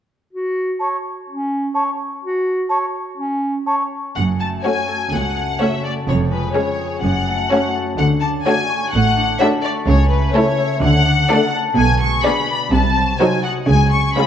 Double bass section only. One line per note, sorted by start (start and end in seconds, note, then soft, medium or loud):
4.17 4.55 F#1 soft
5.12 5.50 C#2 soft
6.07 6.45 F1 medium
7.02 7.41 F#1 soft
7.98 8.36 D2 medium
8.94 9.31 A1 medium
9.87 10.25 C#2 medium
10.81 11.20 D2 medium
11.77 12.15 B1 medium
12.72 13.10 C2 medium
13.69 14.06 C#2 medium